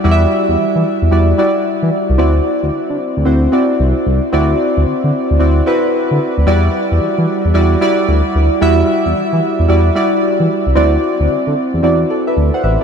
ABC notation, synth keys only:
X:1
M:4/4
L:1/16
Q:"Swing 16ths" 1/4=112
K:Em
V:1 name="Synth keys"
[G,EFde]6- [G,EFde] z [G,EFd]2 [G,EFd]6 | [CEFd]6- [CEFd] z [CEFc]2 [CEFd]6 | [CEFd]6- [CEFd] z [CEFd]2 [CEFB]6 | [G,EFd]6- [G,EFd] z [G,EFd]2 [G,EFd]6 |
[G,EFe]6- [G,EFe] z [G,EFd]2 [G,EFd]6 | [CEFd]6- [CEFd] z [CEFd]2 [Ad] [Be]2 [cf] [Be] z |]